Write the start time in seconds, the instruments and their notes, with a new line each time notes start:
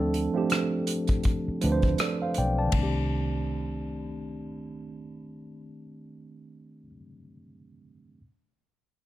Already playing: fingered electric bass D2, tine electric piano F3 A3 C4 D4 A4
0.14 closed hi-hat
0.34 tine electric piano F3 A3 C4 D4 G4
0.50 cross-stick, closed hi-hat
0.87 closed hi-hat
1.07 kick, closed hi-hat
1.24 kick, closed hi-hat
1.48 muted fingered electric bass stroke
1.61 fingered electric bass D2, tine electric piano F3 A3 C4 D4 B4, closed hi-hat
1.72 tine electric piano C5
1.82 kick, closed hi-hat
1.98 tine electric piano A4 D5, cross-stick, closed hi-hat
2.22 tine electric piano C5 F5
2.34 fingered electric bass B1, tine electric piano G5, closed hi-hat
2.39 tine electric piano D5
2.59 tine electric piano D5 A5
2.67 tine electric piano D#3 A3
2.72 fingered electric bass C2, tine electric piano C4, kick, ride
2.79 tine electric piano D4
2.83 tine electric piano G4